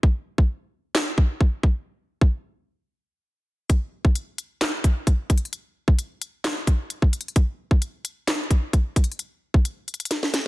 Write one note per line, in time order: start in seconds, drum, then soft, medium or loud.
0.03 kick loud
0.38 kick loud
0.95 snare loud
0.95 clap loud
1.18 kick medium
1.41 kick medium
1.63 kick medium
2.21 kick loud
3.70 kick loud
3.70 closed hi-hat medium
4.05 kick loud
4.15 closed hi-hat medium
4.38 closed hi-hat medium
4.61 snare loud
4.61 clap medium
4.61 closed hi-hat medium
4.84 kick medium
4.84 closed hi-hat medium
5.07 kick medium
5.07 closed hi-hat medium
5.30 kick medium
5.30 closed hi-hat medium
5.38 closed hi-hat medium
5.45 closed hi-hat soft
5.53 closed hi-hat medium
5.88 kick loud
5.99 closed hi-hat medium
6.22 closed hi-hat medium
6.44 snare loud
6.44 clap medium
6.44 closed hi-hat medium
6.67 kick medium
6.67 closed hi-hat medium
6.90 closed hi-hat medium
7.02 kick medium
7.13 closed hi-hat medium
7.13 open hi-hat medium
7.21 closed hi-hat medium
7.28 closed hi-hat soft
7.36 kick loud
7.36 closed hi-hat medium
7.71 kick medium
7.82 closed hi-hat medium
8.05 closed hi-hat medium
8.28 snare loud
8.28 clap loud
8.28 closed hi-hat medium
8.51 kick medium
8.51 closed hi-hat medium
8.73 kick medium
8.73 closed hi-hat medium
8.96 kick medium
8.96 closed hi-hat medium
9.04 closed hi-hat medium
9.12 closed hi-hat soft
9.19 closed hi-hat medium
9.54 kick loud
9.65 closed hi-hat medium
9.88 closed hi-hat soft
9.94 closed hi-hat medium
10.00 closed hi-hat medium
10.05 closed hi-hat medium
10.11 snare medium
10.11 closed hi-hat medium
10.23 snare medium
10.34 snare medium
10.34 closed hi-hat medium